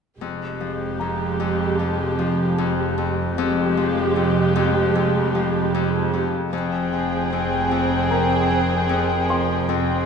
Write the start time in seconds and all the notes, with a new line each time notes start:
0.20 F1 F2 G#3 G4
0.61 F3
1.00 F2 A#5
1.40 F2
1.79 F2
2.19 F3
2.58 F2
2.98 F2
3.36 F1 F2 G#3 G4
3.77 F3
4.16 F2
4.56 F2
4.95 F2
5.35 F3
5.74 F2
6.13 F2
6.52 F1 F2 C4 G#4 G5
6.93 F3
7.32 F2
7.71 F2
8.10 F2 A#4 A#5
8.51 F2
8.89 F2
9.29 F3 C6
9.68 F1 F2 C4 G#4 G5